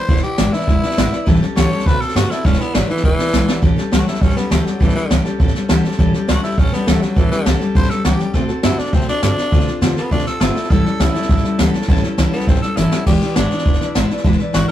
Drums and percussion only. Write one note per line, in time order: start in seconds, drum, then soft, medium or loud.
0.09 kick loud
0.09 snare soft
0.16 snare soft
0.23 snare soft
0.38 snare loud
0.38 hi-hat pedal medium
0.53 snare soft
0.61 snare soft
0.68 kick loud
0.68 snare soft
0.83 snare soft
0.90 snare soft
0.98 snare loud
0.98 hi-hat pedal medium
1.13 snare soft
1.27 kick loud
1.27 snare soft
1.35 snare soft
1.42 snare soft
1.57 snare loud
1.57 hi-hat pedal medium
1.72 snare soft
1.79 snare soft
1.86 kick loud
1.86 snare soft
2.01 snare soft
2.09 snare soft
2.16 snare loud
2.16 hi-hat pedal medium
2.31 snare soft
2.45 kick loud
2.45 snare soft
2.53 snare soft
2.60 snare soft
2.75 snare loud
2.75 hi-hat pedal medium
2.90 snare soft
2.97 snare soft
3.04 kick loud
3.04 snare soft
3.19 snare soft
3.26 snare soft
3.33 snare loud
3.33 hi-hat pedal medium
3.48 snare medium
3.63 kick loud
3.63 snare soft
3.78 snare soft
3.92 snare loud
3.92 hi-hat pedal medium
4.07 snare soft
4.15 snare soft
4.22 kick loud
4.22 snare soft
4.29 snare soft
4.37 snare soft
4.51 snare loud
4.51 hi-hat pedal medium
4.66 snare soft
4.81 kick loud
4.81 snare soft
4.89 snare soft
4.96 snare soft
5.10 snare loud
5.10 hi-hat pedal medium
5.25 snare soft
5.40 kick loud
5.40 snare soft
5.47 snare soft
5.55 snare soft
5.69 snare loud
5.69 hi-hat pedal medium
5.84 snare soft
5.91 snare soft
5.99 kick loud
5.99 snare soft
6.14 snare soft
6.28 snare loud
6.28 hi-hat pedal medium
6.43 snare soft
6.51 snare soft
6.58 kick loud
6.58 snare soft
6.66 snare soft
6.73 snare soft
6.87 snare loud
6.87 hi-hat pedal medium
7.02 snare soft
7.16 kick loud
7.16 snare soft
7.31 snare soft
7.46 snare loud
7.46 hi-hat pedal medium
7.61 snare soft
7.75 kick loud
7.75 snare soft
7.83 snare soft
7.90 snare soft
8.05 snare loud
8.05 hi-hat pedal medium
8.20 snare soft
8.34 kick loud
8.34 snare soft
8.49 snare soft
8.63 snare loud
8.63 hi-hat pedal medium
8.78 snare soft
8.85 snare soft
8.93 kick loud
8.93 snare soft
9.00 snare soft
9.08 snare soft
9.23 snare loud
9.23 hi-hat pedal medium
9.38 snare soft
9.52 kick loud
9.52 snare soft
9.60 snare soft
9.67 snare soft
9.82 snare loud
9.82 hi-hat pedal medium
9.97 snare soft
10.11 kick loud
10.11 snare soft
10.19 snare soft
10.26 snare soft
10.41 snare loud
10.41 hi-hat pedal medium
10.56 snare soft
10.63 snare soft
10.70 kick loud
10.70 snare soft
10.86 snare soft
11.00 snare loud
11.00 hi-hat pedal medium
11.15 snare soft
11.22 snare soft
11.29 kick loud
11.29 snare soft
11.37 snare soft
11.44 snare soft
11.59 snare loud
11.59 hi-hat pedal medium
11.74 snare soft
11.82 snare soft
11.88 kick loud
11.88 snare soft
11.96 snare soft
12.03 snare soft
12.18 snare loud
12.18 hi-hat pedal medium
12.33 snare soft
12.40 snare soft
12.47 kick loud
12.47 snare soft
12.55 snare soft
12.62 snare soft
12.77 snare medium
12.77 hi-hat pedal medium
12.92 snare medium
13.07 kick loud
13.07 snare soft
13.07 crash medium
13.21 snare soft
13.36 snare loud
13.36 hi-hat pedal medium
13.51 snare soft
13.58 snare soft
13.66 kick loud
13.66 snare soft
13.73 snare soft
13.81 snare soft
13.95 snare loud
13.95 hi-hat pedal medium
14.10 snare soft
14.17 snare soft
14.25 kick loud
14.25 snare soft
14.32 snare soft
14.39 snare soft
14.54 snare loud
14.54 hi-hat pedal medium